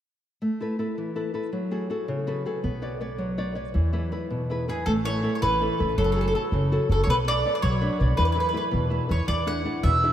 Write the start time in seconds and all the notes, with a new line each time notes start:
0.42 A3
0.60 E4 A4 B4
0.79 E4 A4 B4
0.98 E3
1.16 E4 A4 B4
1.34 E4 A4 B4
1.53 F#3
1.71 F#4 G#4 A4
1.90 F#4 G#4 A4
2.08 C#3
2.27 F#4 G#4 A4 B4
2.46 F#4 G#4 A4
2.64 B1 B3
2.82 B4 C#5 D5
3.00 B4 C#5 D5
3.18 F#3
3.38 B4 C#5 D5
3.55 B4 C#5 D5
3.74 E2 E3
3.93 E4 G#4 B4
4.12 E4 G#4 B4
4.30 B2
4.50 E4 G#4 B4
4.68 E4 G#4 B4
4.86 A1 A3 A4
5.05 E4 A4 B4 C#5
5.23 E4 A4 B4
5.35 C#5
5.42 A1 E3 B4
5.61 E4 A4 B4
5.79 A1 E4 A4 B4
5.98 F#1 F#3 A4
6.04 A4
6.12 A4
6.16 F#4 G#4 A4
6.21 A4
6.28 A4
6.34 F#4 G#4 A4
6.52 F#1 C#3
6.72 F#4 G#4 A4
6.89 F#1 F#4 G#4 A4
7.04 B1 C#5
7.09 B3 B4
7.27 B4 C#5 D5
7.45 B4 C#5 D5
7.55 D5
7.62 B1 F#3 C#5
7.81 D4 B4 C#5
8.00 B1 B4 C#5 D5
8.17 E2 E3 B4
8.25 B4
8.32 E4 G#4 B4
8.40 B4
8.49 B4
8.53 E4 G#4 B4
8.71 E2 B2
8.90 E4 G#4 B4
9.09 E2 E4 G#4 B4 C#5
9.27 E2 E3 D5
9.46 D4 E4 G#4 F#5
9.65 D4 E4 G#4
9.83 E2 B2 E5
10.03 D4 E4 G#4